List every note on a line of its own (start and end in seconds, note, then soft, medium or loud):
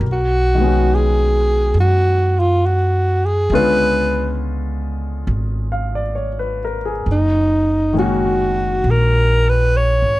0.00 1.72 B1 medium
0.00 0.17 A#4 soft
0.12 0.97 F#4 medium
0.55 3.49 D#3 soft
0.55 3.50 G#3 soft
0.61 3.52 B3 soft
0.61 3.52 C#4 soft
0.66 3.55 F#4 soft
0.95 1.80 G#4 medium
1.74 3.46 F#2 medium
1.80 2.41 F#4 medium
2.40 2.67 F4 medium
2.66 3.27 F#4 medium
3.26 3.53 G#4 medium
3.50 5.23 C#2 medium
3.50 7.07 D3 medium
3.50 7.07 G#3 soft
3.50 7.08 B3 soft
3.50 7.08 C#4 soft
3.50 7.08 F4 medium
3.55 4.37 B4 medium
5.27 7.02 G#1 medium
5.72 6.00 F5 soft
5.95 6.26 D5 soft
6.15 6.58 C#5 soft
6.39 6.77 B4 soft
6.65 6.91 A#4 soft
6.85 7.16 G#4 soft
7.06 8.80 F#1 medium
7.12 7.94 D#4 medium
7.93 10.20 D#3 soft
7.93 10.20 G#3 soft
7.93 10.20 A#3 soft
7.93 10.20 C#4 soft
7.99 8.92 F#4 medium
7.99 10.20 F#4 soft
8.84 9.98 A#1 medium
8.91 9.51 A#4 medium
9.49 9.79 B4 medium
9.77 10.20 C#5 medium
10.02 10.20 G#1 medium